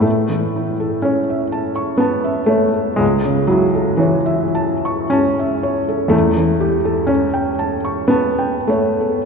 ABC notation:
X:1
M:3/4
L:1/16
Q:1/4=60
K:A
V:1 name="Felt piano"
A,, E, E A c e a c' a e c A | C,, C, E A c e a c' a e c A | [K:Amix] E,, E, G A c g a c' a g c A |]
V:2 name="Felt piano"
A,4 C4 B,2 A,2 | G,2 F,2 E,4 C4 | [K:Amix] A,4 C4 B,2 A,2 |]